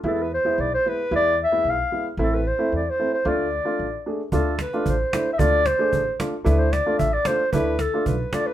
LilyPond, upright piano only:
\new Staff \with { instrumentName = "Upright piano" } { \time 2/4 \tempo 4 = 112 <gis b e'>8 r16 <gis b e'>16 r8 <gis b e'>16 r16 | <gis b e'>8 r16 <gis b e'>16 r8 <gis b e'>16 r16 | <a c' e'>8 r16 <a c' e'>16 r8 <a c' e'>16 r16 | <a d' f'>8 r16 <a d' f'>16 r8 <a d' gis'>16 r16 |
<a d' f'>8 r16 <a d' f'>16 r8 <a d' e'>16 r16 | <a d' f'>8 r16 <a d' gis'>16 r8 <a d' f'>16 r16 | <a d' e'>8 r16 <a d' f'>16 r8 <a d' f'>16 r16 | <a d' e'>8 r16 <a d' f'>16 r8 <a d' f'>16 r16 | }